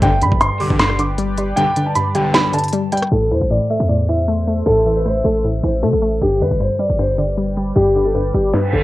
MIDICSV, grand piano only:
0, 0, Header, 1, 2, 480
1, 0, Start_track
1, 0, Key_signature, 0, "minor"
1, 0, Tempo, 387097
1, 25, Time_signature, 4, 2, 24, 8
1, 10955, End_track
2, 0, Start_track
2, 0, Title_t, "Grand piano"
2, 0, Program_c, 0, 0
2, 32, Note_on_c, 0, 79, 98
2, 235, Note_off_c, 0, 79, 0
2, 281, Note_on_c, 0, 83, 83
2, 480, Note_off_c, 0, 83, 0
2, 505, Note_on_c, 0, 84, 89
2, 711, Note_off_c, 0, 84, 0
2, 748, Note_on_c, 0, 86, 74
2, 952, Note_off_c, 0, 86, 0
2, 988, Note_on_c, 0, 84, 93
2, 1192, Note_off_c, 0, 84, 0
2, 1229, Note_on_c, 0, 86, 75
2, 1904, Note_off_c, 0, 86, 0
2, 1938, Note_on_c, 0, 79, 112
2, 2287, Note_off_c, 0, 79, 0
2, 2310, Note_on_c, 0, 81, 68
2, 2408, Note_off_c, 0, 81, 0
2, 2423, Note_on_c, 0, 83, 81
2, 2630, Note_off_c, 0, 83, 0
2, 2670, Note_on_c, 0, 79, 79
2, 2873, Note_off_c, 0, 79, 0
2, 2911, Note_on_c, 0, 83, 89
2, 3114, Note_off_c, 0, 83, 0
2, 3149, Note_on_c, 0, 81, 83
2, 3599, Note_off_c, 0, 81, 0
2, 3627, Note_on_c, 0, 79, 86
2, 3832, Note_off_c, 0, 79, 0
2, 3865, Note_on_c, 0, 69, 79
2, 4071, Note_off_c, 0, 69, 0
2, 4110, Note_on_c, 0, 72, 80
2, 4314, Note_off_c, 0, 72, 0
2, 4346, Note_on_c, 0, 74, 74
2, 4551, Note_off_c, 0, 74, 0
2, 4587, Note_on_c, 0, 76, 77
2, 4792, Note_off_c, 0, 76, 0
2, 4816, Note_on_c, 0, 74, 76
2, 5025, Note_off_c, 0, 74, 0
2, 5068, Note_on_c, 0, 76, 74
2, 5743, Note_off_c, 0, 76, 0
2, 5777, Note_on_c, 0, 69, 107
2, 6126, Note_off_c, 0, 69, 0
2, 6162, Note_on_c, 0, 71, 73
2, 6254, Note_off_c, 0, 71, 0
2, 6267, Note_on_c, 0, 72, 91
2, 6472, Note_off_c, 0, 72, 0
2, 6498, Note_on_c, 0, 69, 72
2, 6707, Note_off_c, 0, 69, 0
2, 6986, Note_on_c, 0, 72, 72
2, 7191, Note_off_c, 0, 72, 0
2, 7224, Note_on_c, 0, 69, 77
2, 7676, Note_off_c, 0, 69, 0
2, 7713, Note_on_c, 0, 67, 92
2, 7915, Note_off_c, 0, 67, 0
2, 7960, Note_on_c, 0, 71, 77
2, 8159, Note_off_c, 0, 71, 0
2, 8187, Note_on_c, 0, 72, 85
2, 8392, Note_off_c, 0, 72, 0
2, 8429, Note_on_c, 0, 74, 71
2, 8633, Note_off_c, 0, 74, 0
2, 8669, Note_on_c, 0, 72, 84
2, 8873, Note_off_c, 0, 72, 0
2, 8910, Note_on_c, 0, 74, 69
2, 9584, Note_off_c, 0, 74, 0
2, 9618, Note_on_c, 0, 67, 104
2, 9966, Note_off_c, 0, 67, 0
2, 9987, Note_on_c, 0, 69, 67
2, 10086, Note_off_c, 0, 69, 0
2, 10102, Note_on_c, 0, 71, 74
2, 10309, Note_off_c, 0, 71, 0
2, 10347, Note_on_c, 0, 67, 73
2, 10552, Note_off_c, 0, 67, 0
2, 10589, Note_on_c, 0, 71, 85
2, 10793, Note_off_c, 0, 71, 0
2, 10827, Note_on_c, 0, 69, 76
2, 10955, Note_off_c, 0, 69, 0
2, 10955, End_track
0, 0, End_of_file